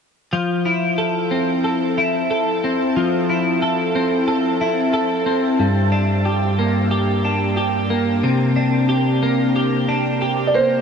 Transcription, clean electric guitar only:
0.33 F3
0.66 E4
0.98 A4
1.31 C4
1.64 A4
1.98 E4
2.31 A4
2.64 C4
2.96 F3
3.30 E4
3.62 A4
3.95 C4
4.28 A4
4.61 E4
4.93 A4
5.26 C4
5.59 G2
5.92 D4
6.25 G4
6.59 A#3
6.91 G4
7.25 D4
7.57 G4
7.90 A#3
8.23 C3
8.56 D4
8.89 G4
9.23 A#3
9.56 G4
9.89 D4
10.22 G4
10.54 A#3

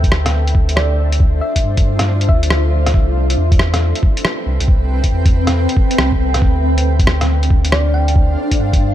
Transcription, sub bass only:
Already playing: D2
1.64 G2
2.29 D2
2.94 C2
3.38 E2
4.46 C2
4.61 C2
5.12 E2
5.99 C2
6.42 D2
8.59 G2

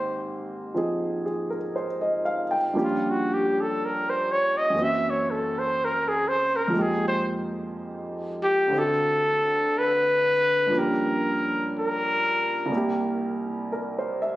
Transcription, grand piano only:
Already playing: G#2 D#3 A#3 C4 G4
0.74 F3 C4 D#4 G#4
1.26 G#4
1.50 A#4
1.76 C5
2.01 D#5
2.25 F5
2.51 G5
2.73 G2 F3 A#3 C#4
2.79 G4
4.70 F#2 E3
4.75 A#3 C4
4.81 F#4
6.68 F2 F3 G#3
6.74 A#3 D#4
6.79 G4
8.67 D2 D3
8.73 C4 E4
8.78 F#4
10.67 G2 F3
10.72 A#3 C#4
10.78 G4
12.66 C2 C3
12.72 A#3 E4
12.77 G4
13.72 A#4
13.99 C5
14.22 E5

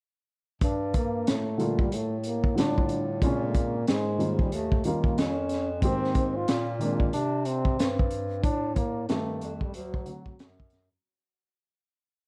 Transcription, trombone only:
0.63 D4
0.97 A#3
1.29 A3
1.81 G3
1.95 A3
2.19 A3
2.26 A#3
2.58 D4
3.23 C#4
3.49 A3
3.56 A#3
3.88 G#3
4.42 G3
4.54 A3
4.86 A#3
5.19 C#4
5.83 C4
6.36 F4
7.14 D4
7.46 C4
8.43 D4
8.75 A#3
9.09 A3
9.63 G3
9.76 F#3

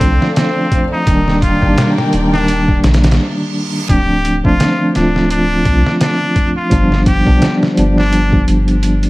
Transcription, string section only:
Already playing: D4 A4 C5 F5
1.07 D#3 A#4 D5 G5

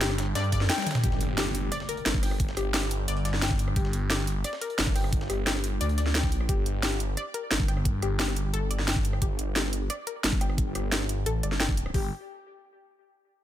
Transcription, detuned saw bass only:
Already playing: G1
0.35 G2
0.52 G2
1.03 G1
1.21 G1
2.06 G1
2.57 G1
3.08 G1
3.76 G1
3.93 G1
4.79 G1
5.30 G1
5.81 D2
6.49 G1
6.66 G1
7.51 G1
8.02 G1
8.54 G1
9.22 G1
9.39 G1
10.24 G1
10.75 G1
11.26 A1
11.43 G1
11.94 G1

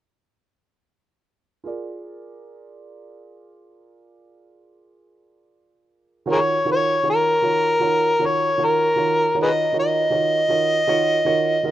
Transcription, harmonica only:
6.32 G#4 A#4 C#5
6.72 C#5
7.10 A#4
8.26 C#5
8.65 A#4
9.42 G#4 B4 D#5
9.80 D#5

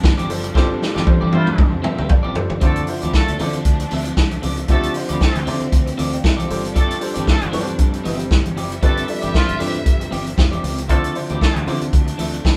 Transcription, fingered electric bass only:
0.04 G1
0.30 F#1
0.56 G1
0.96 G1
1.22 G1
1.33 G2
1.59 G2
1.73 F2
1.99 D2
2.10 G1
2.25 A1
2.51 G1
2.62 D2
3.03 D2
3.29 D2
3.40 D3
3.66 D2
3.92 D2
4.17 C2
4.44 C#2
4.69 D2
5.10 D2
5.36 D2
5.47 D3
5.73 D2
5.99 D2
6.25 C2
6.51 G1
7.17 G1
7.43 G1
7.55 G2
7.80 G2
8.06 G1
8.31 G1
8.58 F#1
8.83 G1
9.24 G1
9.50 G1
9.61 G2
9.87 G1
10.12 G1
10.38 F1
10.64 C#2
10.90 D2
11.30 D2
11.56 D2
11.67 D3
11.93 D2
12.19 D2
12.45 C2

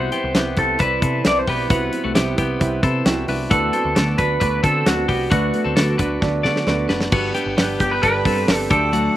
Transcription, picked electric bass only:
0.24 C2
0.36 C2
0.58 C2
0.80 C2
1.02 C3
1.26 C2
1.48 B1
1.71 C2
2.05 C2
2.16 C2
2.38 C2
2.61 C2
2.83 C3
3.06 C2
3.28 C2
3.51 D2
3.85 D2
3.97 D2
4.19 D2
4.42 D2
4.64 D3
4.87 D2
5.09 C2
5.32 D2
5.66 D2
5.77 D2
5.99 D2
6.22 D2
6.45 D3
6.67 D2
6.90 F#1
7.13 G1
7.46 G1
7.58 G1
7.80 G1
8.04 G1
8.25 G2
8.49 G1
8.71 D2

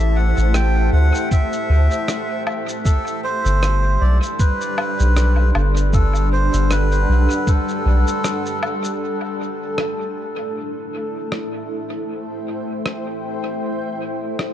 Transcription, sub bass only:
Already playing: A1
0.37 A1
0.93 D2
1.69 D2
3.45 G1
4.01 B1
5.00 B1
5.55 G1
6.53 G1
7.09 B1
7.86 B1

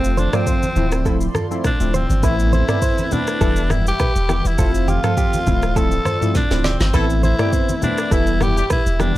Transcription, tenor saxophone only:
Already playing: C4
0.19 D4
0.35 C4
1.66 D4
1.95 C4
2.25 E4
2.54 E4
3.13 D4
3.72 E4
3.88 G4
4.47 E4
4.89 F4
5.77 A4
6.37 D4
6.66 C4
6.95 E4
7.24 E4
7.83 D4
8.13 E4
8.42 G4
8.72 E4
9.01 D4

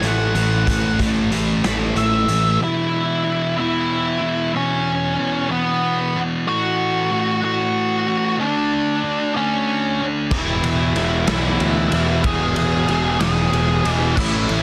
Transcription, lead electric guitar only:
0.07 F#5
1.65 B5
1.98 E5
2.63 E4 E5
3.60 E4 E5
4.56 C#4 C#5
5.51 B3 B4
6.48 F#4 F#5
7.44 F#4 F#5
8.40 D4 D5
9.36 C#4 C#5
10.32 E4 E5
11.28 E4 E5
12.26 G#4 G#5
13.22 G#4 G#5
13.92 F#5
14.19 E4 E5

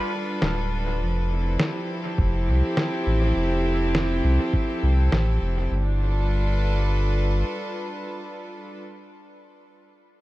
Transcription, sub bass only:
0.42 D1
1.01 F1
2.18 F1
2.48 C2
3.07 A1
3.36 F1
4.24 C2
4.83 C2
5.13 A1
5.42 F1
5.71 G1

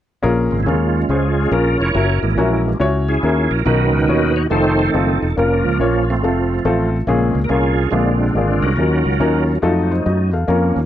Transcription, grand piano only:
0.23 A#2 C#4 F4 G#4 A#4
0.66 C#4 F4 G#4 A#4
1.10 C#4 F4 G#4 C5
1.52 C#4 F4 G#4 A#4
1.95 C#4 E4 F#4 A#4
2.38 C#4 E4 F#4 A#4
2.80 C#4 E4 F#4 C#5
3.23 C#4 E4 F#4 A#4
3.65 B2 B3 D#4 F#4 A#4
4.09 B3 D#4 F#4 C#5
4.51 C4 D#4 F4 A4
4.94 C4 D#4 F4 A4
5.37 A#3 C#4 F4 A#4
5.80 A#3 C#4 F4 C#5
6.23 A3 C4 F4 A4
6.65 A3 C4 F4 A4
7.07 A#2 A#3 C#4 F4 G#4
7.50 A#3 C#4 F4 A#4
7.93 A#2 A#3 D4 F4 G#4
8.35 A#3 D4 F4 G#4
8.79 D#3 C#4 D#4 F#4 A#4
9.20 C#4 D#4 F#4 A#4
9.62 D#4 F4 F#4 A4
9.91 D#4 C5
10.06 F#4 D#5
10.33 A4 F5
10.48 A#3 C#4 F4 A#4

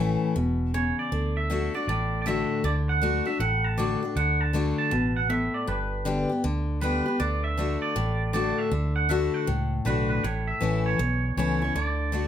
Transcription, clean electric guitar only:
Already playing: E5
0.74 C#5
0.99 D5
1.37 E5
1.75 D5
1.88 D5
2.22 D5
2.27 E5
2.65 D5
2.89 F#5
3.27 E5
3.40 F#5
3.64 A5
3.78 D5
4.17 F#5
4.41 A5
4.78 A5
5.17 F#5
5.30 E5
5.54 D5
5.68 B4
6.82 B4
7.06 B4
7.20 D5
7.44 E5
7.82 D5
8.34 D5
8.58 E5
8.96 F#5
9.10 E5
9.34 F#5
9.86 B4
10.10 B4
10.24 C#5
10.48 E5
10.86 C#5
11.38 C#5
11.62 C#5
11.76 D5

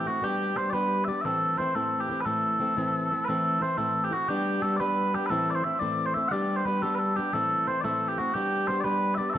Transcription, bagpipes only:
0.07 F#4
0.24 G4
0.57 C5
0.70 B4 D5
1.04 D5 E5
1.21 A4 E5
1.58 C5
1.75 A4
2.00 G4
2.09 G4
2.21 B4
2.25 A4
3.24 A4 B4
3.62 C5
3.77 A4
4.04 G4
4.12 F#4
4.28 G4
4.62 A4
4.76 B4 D5
5.14 G4
5.26 A4 B4
5.50 D5
5.55 C5
5.64 E5
5.79 D5
6.06 C5
6.14 E5
6.28 D5 F#5
6.56 C5
6.66 B4
6.82 A4
6.95 A4 B4
7.16 G4
7.33 A4
7.67 C5
7.81 A4 D5
8.08 G4
8.18 F#4
8.34 G4
8.68 C5
8.80 B4 D5
9.15 D5 E5
9.30 A4 E5

